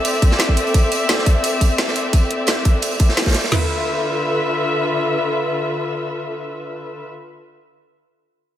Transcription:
0.00 3.48 C4 medium
0.00 3.48 A4 medium
0.00 3.48 D5 medium
0.00 3.48 E5 medium
0.05 closed hi-hat medium
0.13 closed hi-hat soft
0.22 kick loud
0.22 closed hi-hat medium
0.31 snare medium
0.39 snare loud
0.39 closed hi-hat medium
0.49 kick medium
0.57 closed hi-hat medium
0.67 closed hi-hat soft
0.74 kick loud
0.74 closed hi-hat medium
0.92 closed hi-hat medium
1.09 snare loud
1.09 closed hi-hat medium
1.18 snare soft
1.26 kick medium
1.26 closed hi-hat medium
1.44 closed hi-hat medium
1.61 kick medium
1.61 closed hi-hat medium
1.78 snare loud
1.78 closed hi-hat medium
1.78 open hi-hat medium
1.87 snare medium
1.96 closed hi-hat medium
2.13 kick loud
2.13 closed hi-hat medium
2.31 closed hi-hat medium
2.47 snare loud
2.47 closed hi-hat medium
2.65 kick medium
2.65 closed hi-hat medium
2.82 closed hi-hat medium
2.91 closed hi-hat soft
2.99 kick medium
2.99 closed hi-hat medium
3.09 snare soft
3.17 snare medium
3.17 snare loud
3.17 closed hi-hat medium
3.21 snare medium
3.21 closed hi-hat medium
3.26 kick medium
3.26 snare medium
3.26 closed hi-hat medium
3.29 snare medium
3.29 closed hi-hat medium
3.34 snare loud
3.34 closed hi-hat medium
3.34 open hi-hat medium
3.44 snare soft
3.52 7.05 D3 medium
3.52 7.05 F4 medium
3.52 7.05 A4 medium
3.52 7.05 B4 medium
3.52 7.05 E5 medium
3.52 snare medium
3.52 floor tom medium
3.52 crash medium

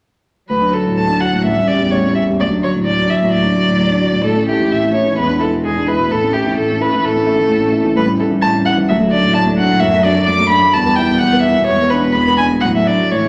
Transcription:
0.49 0.96 D2 soft
0.49 1.48 F#3 soft
0.49 0.75 B4 medium
0.62 0.81 D4 soft
0.73 0.93 F#4 soft
0.73 1.00 A4 soft
0.86 1.05 A2 soft
0.97 1.44 D2 soft
0.97 1.22 A5 medium
1.09 1.29 D4 soft
1.21 1.40 F#4 soft
1.21 1.44 F#5 soft
1.33 1.45 A2 soft
1.44 1.92 A1 soft
1.44 2.42 G3 soft
1.44 1.69 E5 medium
1.56 1.76 C#4 soft
1.68 1.88 G4 soft
1.68 1.93 D5 soft
1.81 2.00 E2 soft
1.91 2.39 A1 soft
1.91 2.14 C#5 soft
2.06 2.24 C#4 soft
2.15 2.35 G4 soft
2.15 2.23 E5 medium
2.28 2.40 E2 soft
2.40 2.86 D2 soft
2.40 4.25 F#3 soft
2.40 2.48 D5 medium
2.51 2.70 D4 soft
2.63 2.82 F#4 soft
2.63 2.71 C#5 soft
2.75 2.94 A2 soft
2.86 3.31 D2 soft
2.86 3.12 D5 medium
2.99 3.17 D4 soft
3.09 3.28 F#4 soft
3.09 3.33 E5 soft
3.22 3.40 A2 soft
3.33 3.78 D2 soft
3.33 4.23 D5 medium
3.44 3.63 D4 soft
3.56 3.75 F#4 soft
3.67 3.86 A2 soft
3.79 4.24 D2 soft
3.91 4.09 D4 soft
4.02 4.20 F#4 soft
4.12 4.23 A2 soft
4.24 4.71 A2 soft
4.24 5.19 A3 soft
4.24 4.47 A4 medium
4.36 4.55 C#4 soft
4.48 4.67 E4 soft
4.48 4.74 G4 soft
4.60 4.79 E3 soft
4.72 5.17 A2 soft
4.72 4.93 E5 medium
4.83 5.02 C#4 soft
4.94 5.13 E4 soft
4.94 5.17 C#5 soft
5.06 5.18 E3 soft
5.17 5.62 E2 soft
5.17 6.11 G#3 soft
5.17 5.40 B4 medium
5.29 5.48 D4 soft
5.40 5.59 E4 soft
5.40 5.48 A4 soft
5.52 5.71 B2 soft
5.64 6.09 E2 soft
5.64 5.89 G#4 medium
5.77 5.95 D4 soft
5.88 6.07 E4 soft
5.88 6.13 B4 medium
5.99 6.10 B2 soft
6.11 6.56 A2 soft
6.11 7.93 A3 soft
6.11 6.35 A4 medium
6.23 6.41 C#4 soft
6.33 6.52 E4 soft
6.33 6.56 G4 medium
6.46 6.65 E3 soft
6.57 7.03 A2 soft
6.57 6.83 A4 medium
6.69 6.88 C#4 soft
6.80 6.99 E4 soft
6.80 7.06 B4 medium
6.93 7.11 E3 soft
7.04 7.47 A2 soft
7.04 7.96 A4 medium
7.16 7.34 C#4 soft
7.26 7.45 E4 soft
7.38 7.57 E3 soft
7.49 7.94 A2 soft
7.60 7.79 C#4 soft
7.72 7.91 E4 soft
7.85 7.96 E3 soft
7.96 8.41 A2 soft
7.96 8.90 G3 soft
7.96 8.04 B4 medium
8.07 8.25 C#4 soft
8.19 8.37 E4 soft
8.19 8.28 A4 soft
8.31 8.49 E3 soft
8.42 8.87 A2 soft
8.42 8.50 A5 medium
8.54 8.72 C#4 soft
8.65 8.83 E4 soft
8.65 8.73 F#5 medium
8.77 8.88 E3 soft
8.88 9.34 D2 soft
8.88 10.74 F#3 soft
8.88 8.96 E5 medium
9.00 9.18 A3 soft
9.11 9.30 D4 soft
9.11 9.34 D5 medium
9.24 9.42 A2 soft
9.34 9.80 D2 soft
9.34 9.42 A5 medium
9.47 9.65 A3 soft
9.57 9.77 D4 soft
9.57 9.82 F#5 medium
9.71 9.82 A2 soft
9.80 10.27 F#2 soft
9.80 10.06 E5 medium
9.93 10.11 A3 soft
10.04 10.23 D4 soft
10.04 10.28 D5 medium
10.16 10.35 F#3 soft
10.27 10.73 F#2 soft
10.27 10.48 D6 medium
10.39 10.58 A3 soft
10.49 10.69 D4 soft
10.49 10.75 B5 medium
10.62 10.74 F#3 soft
10.73 11.20 E2 soft
10.73 11.70 G3 soft
10.73 10.97 A5 medium
10.86 11.05 B3 soft
10.95 11.17 E4 soft
10.95 11.20 G5 medium
11.11 11.29 B2 soft
11.19 11.67 E2 soft
11.19 11.41 F#5 medium
11.33 11.52 B3 soft
11.41 11.66 E5 medium
11.46 11.64 E4 soft
11.58 11.69 B2 soft
11.66 12.14 E2 medium
11.66 12.65 G#3 soft
11.66 11.91 C#5 medium
11.81 12.00 B3 soft
11.90 12.11 D4 soft
11.90 12.14 B4 medium
12.05 12.23 B2 soft
12.13 12.61 E2 soft
12.13 12.37 B5 medium
12.27 12.46 B3 soft
12.38 12.58 D4 soft
12.38 12.46 G#5 medium
12.51 12.63 B2 soft
12.60 13.10 A2 soft
12.60 13.15 F#3 soft
12.60 12.66 F#5 medium
12.76 12.95 A3 soft
12.76 12.89 E5 medium
12.88 13.07 D4 soft
12.88 13.13 D5 medium
13.00 13.12 F#3 soft
13.11 13.29 A2 soft
13.11 13.29 E3 soft
13.11 13.29 C#5 medium
13.25 13.29 A3 soft

